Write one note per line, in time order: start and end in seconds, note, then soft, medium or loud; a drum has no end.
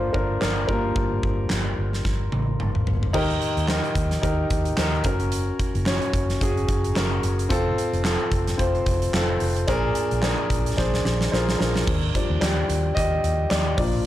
0.00 0.67 A#3 soft
0.00 0.15 D4 medium
0.00 0.69 F4 medium
0.00 1.46 A4 soft
0.00 0.13 A#4 medium
0.00 0.14 C5 medium
0.00 3.15 D5 medium
0.13 0.37 G1 medium
0.13 0.40 D4 medium
0.13 0.40 A#4 medium
0.13 kick medium
0.41 0.64 G1 medium
0.41 0.49 D4 soft
0.41 0.47 A#4 medium
0.41 snare medium
0.41 clap medium
0.67 0.91 G1 medium
0.67 1.46 G3 soft
0.67 1.46 A#3 soft
0.67 2.56 D4 soft
0.67 1.47 F4 soft
0.67 2.55 A#4 medium
0.67 kick medium
0.96 1.18 G1 medium
0.96 kick loud
1.23 1.46 G1 medium
1.23 kick medium
1.50 1.73 G1 medium
1.50 snare medium
1.50 clap medium
1.79 2.00 G1 medium
1.93 snare soft
2.05 2.27 G1 medium
2.05 kick medium
2.05 snare soft
2.32 2.55 A1 medium
2.32 high tom medium
2.60 2.82 G1 medium
2.60 mid tom medium
2.75 mid tom medium
2.87 3.10 G1 medium
2.87 floor tom medium
3.03 floor tom medium
3.13 3.37 D#2 loud
3.13 3.92 D#3 medium
3.13 3.58 D#4 medium
3.13 3.58 G4 medium
3.13 3.59 A#4 loud
3.13 kick loud
3.13 crash medium
3.30 closed hi-hat soft
3.42 closed hi-hat medium
3.57 3.79 D#2 medium
3.57 closed hi-hat soft
3.68 4.12 D#4 medium
3.68 4.13 G4 medium
3.68 4.13 A#4 medium
3.68 snare medium
3.68 clap medium
3.84 closed hi-hat soft
3.95 4.18 D#2 medium
3.95 kick medium
3.95 closed hi-hat medium
4.11 snare soft
4.11 closed hi-hat soft
4.21 4.46 D#2 medium
4.21 4.67 D#4 medium
4.21 4.67 G4 medium
4.21 4.67 A#4 medium
4.21 kick medium
4.21 closed hi-hat medium
4.50 4.73 D#2 medium
4.50 kick medium
4.50 closed hi-hat medium
4.65 closed hi-hat soft
4.77 5.00 D#2 medium
4.77 5.05 D#4 medium
4.77 5.05 G4 medium
4.77 5.04 A#4 medium
4.77 snare medium
4.77 clap medium
5.04 5.49 F#1 medium
5.04 5.71 C#4 medium
5.04 5.71 F#4 medium
5.04 5.72 A#4 medium
5.04 kick medium
5.04 closed hi-hat medium
5.20 closed hi-hat soft
5.32 closed hi-hat medium
5.59 kick medium
5.59 closed hi-hat medium
5.75 5.97 F#1 medium
5.75 closed hi-hat soft
5.85 6.30 C#4 medium
5.85 6.31 F#4 medium
5.85 6.31 C#5 medium
5.85 snare medium
5.85 clap medium
6.02 closed hi-hat soft
6.13 6.36 F#1 medium
6.13 kick medium
6.13 closed hi-hat medium
6.30 snare soft
6.30 closed hi-hat soft
6.41 6.64 F#1 medium
6.41 6.85 C#4 medium
6.41 6.86 F#4 medium
6.41 6.86 G#4 medium
6.41 kick medium
6.41 closed hi-hat medium
6.57 closed hi-hat soft
6.68 6.91 F#1 medium
6.68 kick medium
6.68 closed hi-hat medium
6.84 closed hi-hat soft
6.95 7.19 F#1 medium
6.95 7.40 C#4 medium
6.95 7.40 F#4 medium
6.95 7.41 A#4 medium
6.95 snare loud
6.95 clap medium
7.23 7.46 F#1 medium
7.23 closed hi-hat medium
7.39 closed hi-hat soft
7.49 7.73 F1 loud
7.49 7.94 C4 loud
7.49 7.94 F4 medium
7.49 7.95 A4 loud
7.49 kick loud
7.49 closed hi-hat medium
7.78 closed hi-hat medium
7.93 8.15 F1 medium
7.93 closed hi-hat soft
8.03 8.49 C4 medium
8.03 8.49 F4 medium
8.03 8.50 A4 medium
8.03 snare medium
8.03 clap medium
8.32 8.54 F1 medium
8.32 kick medium
8.32 closed hi-hat medium
8.47 snare soft
8.47 closed hi-hat medium
8.57 8.82 F1 medium
8.57 9.03 C4 medium
8.57 9.03 F4 medium
8.57 9.04 C5 medium
8.57 kick medium
8.57 closed hi-hat medium
8.75 closed hi-hat soft
8.86 9.09 F1 medium
8.86 kick medium
8.86 closed hi-hat medium
9.02 closed hi-hat soft
9.13 9.36 F1 medium
9.13 9.58 C4 medium
9.13 9.58 F4 medium
9.13 9.59 A4 medium
9.13 snare medium
9.13 clap medium
9.40 9.64 F1 medium
9.40 open hi-hat medium
9.56 closed hi-hat soft
9.67 9.91 A#1 loud
9.67 10.46 A#2 medium
9.67 10.12 D4 loud
9.67 10.13 G#4 loud
9.67 10.13 A#4 loud
9.67 kick loud
9.67 closed hi-hat medium
9.95 closed hi-hat medium
10.11 10.34 A#1 medium
10.11 closed hi-hat soft
10.22 10.67 D4 medium
10.22 10.67 G#4 medium
10.22 10.68 A#4 medium
10.22 snare medium
10.22 clap medium
10.50 10.73 A#1 medium
10.50 kick medium
10.50 closed hi-hat medium
10.66 closed hi-hat soft
10.77 11.00 A#1 loud
10.77 11.22 D4 medium
10.77 11.22 G#4 medium
10.77 11.23 C5 medium
10.77 kick medium
10.77 snare medium
10.94 snare medium
11.05 11.28 A#1 medium
11.05 snare medium
11.21 snare medium
11.32 11.55 A#1 loud
11.32 11.60 D4 medium
11.32 11.59 F4 medium
11.32 11.77 G#4 medium
11.32 11.57 A#4 medium
11.32 11.60 C5 medium
11.32 snare medium
11.49 snare medium
11.59 11.82 A#1 medium
11.59 12.15 D4 medium
11.59 12.43 A#4 medium
11.59 snare medium
11.76 snare medium
11.87 12.10 D#2 medium
11.87 kick loud
11.87 crash medium
12.15 12.52 F3 medium
12.15 12.52 G3 soft
12.15 12.53 D4 medium
12.15 kick medium
12.15 closed hi-hat medium
12.30 12.40 D#2 medium
12.41 12.64 D#2 medium
12.41 12.93 G4 medium
12.41 12.97 D5 medium
12.41 snare medium
12.41 clap medium
12.41 closed hi-hat medium
12.69 12.91 D#2 medium
12.69 closed hi-hat medium
12.95 13.19 D#2 medium
12.95 13.47 G4 medium
12.95 13.51 D#5 loud
12.95 kick medium
12.95 closed hi-hat medium
13.24 13.46 D#2 medium
13.24 closed hi-hat medium
13.50 13.73 D#2 medium
13.50 13.58 G4 medium
13.50 13.56 D5 medium
13.50 snare loud
13.50 clap medium
13.50 closed hi-hat medium
13.77 14.06 A#1 loud
13.77 14.06 F3 medium
13.77 14.06 A#3 soft
13.77 14.06 D4 medium
13.77 14.06 F4 medium
13.77 14.06 D5 medium
13.77 kick loud
13.77 open hi-hat medium